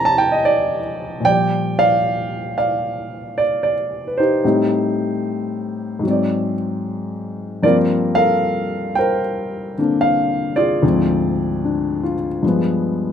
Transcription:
Already playing: F2 C3 D#3 G3 A3 D4 G#5 A5 A#5
0.05 A5
0.18 G5
0.32 D#5
0.45 D5
1.20 A#2 F3
1.25 G3 D5 G5
1.32 D5
1.79 D5 F5
2.58 D5 F5
3.38 D5
3.63 D5
4.07 B4
4.18 D#4 G4 C5
4.45 A2 G3 C4 D#4
5.99 G#2 F#3
6.07 C4 D5
7.63 G2 F3 A#3 F4 A#4 D5
7.67 C4
8.15 A4 A#4 F5
8.95 A#4 C5 G5
9.78 D3 A#3 C4 D4
10.01 F5
10.56 F4 G#4 D5
10.83 D2 G#2 F3 C4
11.64 D4
12.03 F4
12.43 G2 F3 G#3
12.48 B3

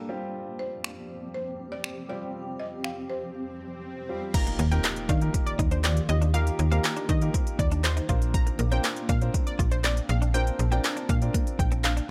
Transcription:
0.09 F2 F3 G3 C4 F4 G4
0.34 swell
0.59 C5
0.84 finger snap
1.34 C5
1.72 D5
1.84 finger snap
2.09 G3 C4 F4 G4 D5
2.60 D#5
2.84 F5, finger snap
3.10 C5
4.09 G3 C4 F4 G4
4.34 D#3 A#3 D#4 F4 G4 A#4 A#5, kick, closed hi-hat, crash, impact
4.47 muted clean electric guitar stroke, closed hi-hat
4.59 D#2 A#3, closed hi-hat
4.71 A#3 C4 D#4 F4 G4 A#4 G5, closed hi-hat
4.84 snare, clap, closed hi-hat
4.96 closed hi-hat
5.09 D#3 D4 F5, kick, closed hi-hat
5.21 A#3 D#4 F4 G4 A#4, closed hi-hat
5.34 muted clean electric guitar stroke, kick, closed hi-hat
5.46 D5, closed hi-hat
5.59 D#2 D#4, kick, closed hi-hat
5.71 D4 C5, closed hi-hat
5.84 C4 D5, snare, clap, closed hi-hat
5.97 closed hi-hat
6.09 D#2 D#5, muted clean electric guitar stroke, closed hi-hat
6.22 D4, closed hi-hat
6.34 A#3 D#4 F4 G4 A#4 F5, closed hi-hat
6.47 closed hi-hat
6.59 D#2, muted clean electric guitar stroke, closed hi-hat
6.71 A#3 C4 D#4 F4 G4 A#4 F5, closed hi-hat
6.84 muted clean electric guitar stroke, snare, clap, closed hi-hat
6.96 D4, closed hi-hat
7.09 D#3 D4 D#5, kick, closed hi-hat
7.21 A#3 D#4 F4 G4 A#4, closed hi-hat
7.34 C4, kick, closed hi-hat
7.47 closed hi-hat
7.59 D#2 D5, muted clean electric guitar stroke, kick, closed hi-hat
7.71 D4, closed hi-hat
7.84 C5, muted clean electric guitar stroke, snare, clap, closed hi-hat
7.97 D#4, closed hi-hat
8.09 A#1 C4 D4 F4 A#4 C5, kick, closed hi-hat
8.22 closed hi-hat
8.34 A#5, kick, closed hi-hat
8.47 muted clean electric guitar stroke, closed hi-hat
8.59 A#1 A#3, closed hi-hat
8.71 C4 D4 F4 A#4 C5 G5, closed hi-hat
8.84 snare, clap, closed hi-hat
8.96 closed hi-hat
9.09 A#2 D4 F5, kick, closed hi-hat
9.21 C4 D4 F4 A#4 C5, closed hi-hat
9.34 muted clean electric guitar stroke, kick, closed hi-hat
9.47 D5, closed hi-hat
9.59 A#1 F4, kick, closed hi-hat
9.71 D4 C5, closed hi-hat
9.84 C4 D5, snare, clap, closed hi-hat
9.97 closed hi-hat
10.09 A#1 F5, muted clean electric guitar stroke, closed hi-hat
10.22 D4, closed hi-hat
10.34 A#3 C4 D4 F4 A#4 C5 G5, closed hi-hat
10.47 closed hi-hat
10.59 A#1, muted clean electric guitar stroke, closed hi-hat
10.71 C4 D4 F4 A#4 D5 G5, closed hi-hat
10.84 muted clean electric guitar stroke, snare, clap, closed hi-hat
10.97 D4, closed hi-hat
11.09 A#2 D4 F5, kick, closed hi-hat
11.22 C4 D4 F4 A#4 D5, closed hi-hat
11.34 A#3, kick, closed hi-hat
11.47 closed hi-hat
11.59 A#1 G5, muted clean electric guitar stroke, kick, closed hi-hat
11.72 C4, closed hi-hat
11.84 F5, muted clean electric guitar stroke, snare, clap, closed hi-hat
11.97 D4, closed hi-hat

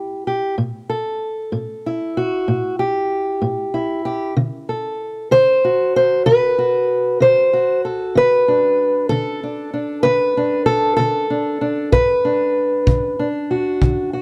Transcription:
Already playing: A2 E4 G4
0.27 G4
0.58 A2
0.90 A4
1.52 A2
1.86 E4
2.17 F#4
2.48 A2
2.79 G4
3.42 A2
3.74 E4
4.05 G4
4.37 D3
4.69 A4
5.31 D3 C5
5.65 F#4
5.96 C5
6.26 D3 B4
6.58 F#4
7.20 D3 C5
7.53 F#4
7.85 A4
8.15 D3 B4
8.48 D4
9.09 D3 A4
9.43 D4
9.74 D4
10.03 D3 B4
10.37 D4
10.66 A4
10.97 D3 A4
11.30 D4
11.61 D4
11.92 D3 B4, kick
12.25 D4
12.87 D3, kick
13.19 D4
13.51 F#4
13.82 D3, kick
14.13 F#4

